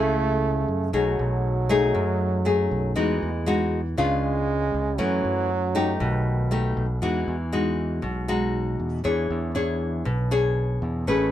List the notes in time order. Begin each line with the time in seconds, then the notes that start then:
Already playing: C#2 C#3 A3 E4 G#4
0.68 F#2
0.93 B1 B2 F#3 A3 D#4 G#4
1.19 B1
1.69 A3 D#4 G#4
1.95 F#2
2.45 A3 D#4 G#4
2.71 B1
2.96 E2 E3 G#3 D#4 F#4
3.22 E2
3.46 G#3 D#4 F#4
3.97 C#2 C#3 G#3 B3 D4 F4
4.74 C#2
4.98 F#2 E3 F#3 A3 C#4
5.24 F#2
5.75 A3 D#4 G4
6.00 B1 B2 D#3
6.51 A3 D#4 G4
6.77 B1
7.02 E2 E3 G#3 D#4 F#4
7.28 E2
7.53 G#3 D#4 F#4
8.02 B1 B2
8.28 G#3 D#4 F#4
8.79 E2
9.04 E2 E3 D4 G#4 C#5
9.30 E2
9.55 D4 G#4 C#5
10.05 B1 B2
10.31 D4 G#4 C#5
10.82 E2
11.07 A1 A3 C#4 G#4 B4